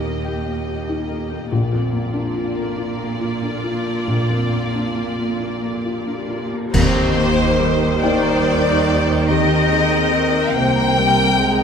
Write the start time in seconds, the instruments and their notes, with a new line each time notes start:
Already playing: felt piano D#2 A#2 A#3 D#4 G4, cello section D#2, harp D#3 A#3 D#4 G4 A#4 G5, viola section A#3, violin section G4 D#5
0.04 felt piano A#3, harp D#5
0.25 felt piano G4, harp G5
0.45 felt piano A#3, harp D#5
0.66 felt piano G4, harp G5
0.87 felt piano D#4, harp D#5
1.08 felt piano G4, harp A#4
1.30 felt piano A#3, harp G4
1.50 felt piano A#1, cello section A#2, harp A#2, viola section A#3, violin section F4 D5
1.71 felt piano F2, harp F3
1.92 harp A#3, felt piano A#3
2.13 felt piano D4, harp D4
2.34 harp F4, felt piano F4
2.55 felt piano A#3, harp A#4
2.77 felt piano F4, harp D5
2.98 felt piano A#3, harp A#4
3.20 felt piano F4, harp D5
3.42 felt piano D4, harp A#4
3.63 harp F4, felt piano F4
3.86 felt piano A#3, harp D4
4.07 felt piano A#1, harp A#2
4.29 felt piano F2, harp F3
4.51 felt piano A#3, harp A#3
4.74 harp D4, felt piano D4
4.95 felt piano F4, harp F4
5.18 felt piano A#3, harp A#4
5.40 felt piano F4, harp D5
5.61 felt piano A#3, harp A#4
5.85 felt piano F4, harp D5
6.07 felt piano D4, harp A#4
6.29 harp F4, felt piano F4
6.51 felt piano A#3, harp D4
6.72 double bass section D#2, felt piano D#2, harp D#3, cello section D#3, viola section C4 G4, violin section C5, concert bass drum, crash
6.94 harp A#3
7.15 viola section A#3, harp D#4
7.59 viola section G3, harp A#4
8.01 felt piano A#3 D#4 G5, clarinet A#4, violin section D5, harp G5, viola section G5
8.23 harp A#5
8.66 harp A#4
9.08 harp D#4
9.28 harp D#3, viola section C4, clarinet G4, violin section A#4 D#5
9.50 harp A#3
9.71 harp D#4, clarinet G#4
10.13 harp A#4, clarinet A#4
10.34 harp D#5
10.53 double bass section C2, cello section C3, viola section A#3, violin section A#4 G5, clarinet C5, harp G5
10.75 harp A#5
10.96 viola section G3, clarinet A#4, harp D#5
11.17 harp A#4
11.39 viola section G#3, clarinet G#4
11.60 harp D#4